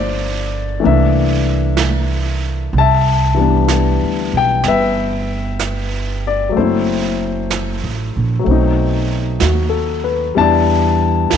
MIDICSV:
0, 0, Header, 1, 4, 480
1, 0, Start_track
1, 0, Key_signature, 0, "major"
1, 0, Tempo, 953895
1, 1377, Time_signature, 4, 2, 24, 8
1, 5722, End_track
2, 0, Start_track
2, 0, Title_t, "Grand piano"
2, 0, Program_c, 0, 0
2, 0, Control_c, 0, 64, 127
2, 0, Note_on_c, 0, 53, 45
2, 0, Note_on_c, 0, 57, 40
2, 0, Note_on_c, 0, 58, 42
2, 0, Note_on_c, 0, 62, 51
2, 0, Note_on_c, 0, 72, 54
2, 0, Note_on_c, 0, 74, 88
2, 400, Note_off_c, 0, 57, 0
2, 402, Note_on_c, 0, 52, 51
2, 408, Note_on_c, 0, 57, 46
2, 409, Note_off_c, 0, 53, 0
2, 414, Note_off_c, 0, 58, 0
2, 416, Control_c, 0, 64, 0
2, 419, Note_off_c, 0, 62, 0
2, 419, Note_off_c, 0, 72, 0
2, 422, Note_on_c, 0, 58, 50
2, 427, Note_on_c, 0, 62, 58
2, 434, Note_on_c, 0, 76, 66
2, 441, Note_off_c, 0, 74, 0
2, 514, Control_c, 0, 64, 127
2, 1212, Note_off_c, 0, 76, 0
2, 1372, Note_off_c, 0, 52, 0
2, 1375, Note_off_c, 0, 57, 0
2, 1382, Note_off_c, 0, 58, 0
2, 1384, Control_c, 0, 64, 0
2, 1385, Note_off_c, 0, 62, 0
2, 1400, Note_on_c, 0, 81, 84
2, 1410, Note_on_c, 0, 76, 59
2, 1461, Control_c, 0, 64, 127
2, 1683, Note_on_c, 0, 52, 42
2, 1693, Note_on_c, 0, 55, 40
2, 1705, Note_on_c, 0, 59, 39
2, 1708, Note_on_c, 0, 62, 44
2, 2200, Note_on_c, 0, 79, 79
2, 2219, Note_off_c, 0, 81, 0
2, 2335, Note_off_c, 0, 76, 0
2, 2337, Note_off_c, 0, 79, 0
2, 2354, Note_on_c, 0, 71, 57
2, 2356, Note_on_c, 0, 76, 79
2, 3134, Note_off_c, 0, 76, 0
2, 3156, Note_on_c, 0, 74, 69
2, 3267, Note_on_c, 0, 54, 46
2, 3281, Note_on_c, 0, 57, 46
2, 3288, Note_off_c, 0, 71, 0
2, 3291, Note_off_c, 0, 52, 0
2, 3296, Note_off_c, 0, 55, 0
2, 3296, Note_off_c, 0, 74, 0
2, 3302, Note_off_c, 0, 59, 0
2, 3304, Note_off_c, 0, 62, 0
2, 3305, Note_on_c, 0, 72, 62
2, 3307, Note_on_c, 0, 60, 42
2, 3308, Control_c, 0, 64, 0
2, 3308, Note_on_c, 0, 69, 45
2, 3320, Note_on_c, 0, 64, 52
2, 3393, Control_c, 0, 64, 127
2, 3763, Note_off_c, 0, 72, 0
2, 4216, Note_off_c, 0, 54, 0
2, 4224, Note_on_c, 0, 54, 47
2, 4239, Note_off_c, 0, 57, 0
2, 4244, Note_off_c, 0, 69, 0
2, 4247, Note_on_c, 0, 57, 41
2, 4256, Note_off_c, 0, 60, 0
2, 4264, Note_on_c, 0, 60, 45
2, 4266, Control_c, 0, 64, 0
2, 4270, Note_off_c, 0, 64, 0
2, 4282, Note_on_c, 0, 63, 55
2, 4360, Control_c, 0, 64, 127
2, 4730, Note_on_c, 0, 66, 44
2, 4878, Note_on_c, 0, 69, 44
2, 5037, Note_off_c, 0, 66, 0
2, 5052, Note_on_c, 0, 71, 49
2, 5135, Note_off_c, 0, 69, 0
2, 5197, Note_off_c, 0, 54, 0
2, 5208, Note_off_c, 0, 57, 0
2, 5208, Note_on_c, 0, 55, 55
2, 5214, Note_on_c, 0, 59, 46
2, 5217, Note_off_c, 0, 60, 0
2, 5217, Note_on_c, 0, 64, 53
2, 5221, Control_c, 0, 64, 0
2, 5221, Note_on_c, 0, 62, 46
2, 5222, Note_on_c, 0, 81, 90
2, 5226, Note_off_c, 0, 63, 0
2, 5239, Note_on_c, 0, 74, 59
2, 5302, Note_off_c, 0, 71, 0
2, 5316, Control_c, 0, 64, 127
2, 5722, Note_off_c, 0, 55, 0
2, 5722, Note_off_c, 0, 59, 0
2, 5722, Note_off_c, 0, 62, 0
2, 5722, Note_off_c, 0, 64, 0
2, 5722, Note_off_c, 0, 74, 0
2, 5722, Note_off_c, 0, 81, 0
2, 5722, End_track
3, 0, Start_track
3, 0, Title_t, "Upright bass"
3, 0, Program_c, 1, 32
3, 0, Note_on_c, 1, 31, 75
3, 393, Note_off_c, 1, 31, 0
3, 429, Note_on_c, 1, 36, 78
3, 1366, Note_off_c, 1, 36, 0
3, 1374, Note_on_c, 1, 36, 71
3, 1996, Note_off_c, 1, 36, 0
3, 2025, Note_on_c, 1, 38, 51
3, 2171, Note_off_c, 1, 38, 0
3, 2180, Note_on_c, 1, 35, 57
3, 2328, Note_off_c, 1, 35, 0
3, 2337, Note_on_c, 1, 31, 78
3, 3280, Note_off_c, 1, 31, 0
3, 3304, Note_on_c, 1, 30, 66
3, 3923, Note_off_c, 1, 30, 0
3, 3941, Note_on_c, 1, 33, 49
3, 4089, Note_off_c, 1, 33, 0
3, 4106, Note_on_c, 1, 34, 62
3, 4252, Note_off_c, 1, 34, 0
3, 4258, Note_on_c, 1, 35, 75
3, 4716, Note_off_c, 1, 35, 0
3, 4735, Note_on_c, 1, 39, 70
3, 5194, Note_off_c, 1, 39, 0
3, 5217, Note_on_c, 1, 40, 72
3, 5673, Note_off_c, 1, 40, 0
3, 5697, Note_on_c, 1, 39, 63
3, 5722, Note_off_c, 1, 39, 0
3, 5722, End_track
4, 0, Start_track
4, 0, Title_t, "Drums"
4, 409, Note_on_c, 9, 25, 35
4, 890, Note_off_c, 9, 25, 0
4, 890, Note_on_c, 9, 25, 36
4, 890, Note_on_c, 9, 38, 46
4, 890, Note_on_c, 9, 44, 48
4, 940, Note_off_c, 9, 38, 0
4, 940, Note_off_c, 9, 44, 0
4, 1372, Note_off_c, 9, 25, 0
4, 1372, Note_on_c, 9, 25, 41
4, 1854, Note_off_c, 9, 25, 0
4, 1854, Note_on_c, 9, 25, 36
4, 1854, Note_on_c, 9, 38, 40
4, 1854, Note_on_c, 9, 44, 52
4, 1904, Note_off_c, 9, 38, 0
4, 1904, Note_off_c, 9, 44, 0
4, 2332, Note_off_c, 9, 25, 0
4, 2332, Note_on_c, 9, 25, 35
4, 2332, Note_on_c, 9, 38, 27
4, 2383, Note_off_c, 9, 38, 0
4, 2815, Note_off_c, 9, 25, 0
4, 2815, Note_on_c, 9, 25, 34
4, 2815, Note_on_c, 9, 38, 38
4, 2815, Note_on_c, 9, 44, 51
4, 2866, Note_off_c, 9, 38, 0
4, 2866, Note_off_c, 9, 44, 0
4, 3295, Note_off_c, 9, 25, 0
4, 3295, Note_on_c, 9, 25, 37
4, 3777, Note_off_c, 9, 25, 0
4, 3777, Note_on_c, 9, 25, 30
4, 3777, Note_on_c, 9, 38, 40
4, 3777, Note_on_c, 9, 44, 53
4, 3827, Note_off_c, 9, 38, 0
4, 3827, Note_off_c, 9, 44, 0
4, 4251, Note_off_c, 9, 25, 0
4, 4251, Note_on_c, 9, 25, 28
4, 4730, Note_off_c, 9, 25, 0
4, 4730, Note_on_c, 9, 25, 37
4, 4730, Note_on_c, 9, 38, 38
4, 4730, Note_on_c, 9, 44, 53
4, 4781, Note_off_c, 9, 38, 0
4, 4781, Note_off_c, 9, 44, 0
4, 5211, Note_off_c, 9, 25, 0
4, 5211, Note_on_c, 9, 25, 31
4, 5689, Note_off_c, 9, 25, 0
4, 5689, Note_on_c, 9, 25, 30
4, 5689, Note_on_c, 9, 38, 39
4, 5689, Note_on_c, 9, 44, 45
4, 5722, Note_off_c, 9, 25, 0
4, 5722, Note_off_c, 9, 38, 0
4, 5722, Note_off_c, 9, 44, 0
4, 5722, End_track
0, 0, End_of_file